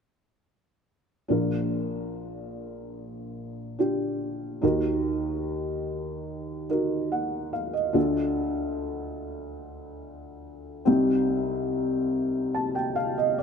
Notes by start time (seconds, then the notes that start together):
1.28 A#1 A#2 D4 F4 A#4
3.79 D4 F4 G4
4.62 D#2 D#3 D#4 F#4 A#4
6.69 D#4 F#4 A#4
7.12 F#5
7.53 F5
7.73 D#5
7.93 D2 D3 D4 F4 A4
10.85 C2 C3 C4 D#4 G4
12.54 A5
12.75 G5
12.96 F5
13.18 D#5
13.38 D5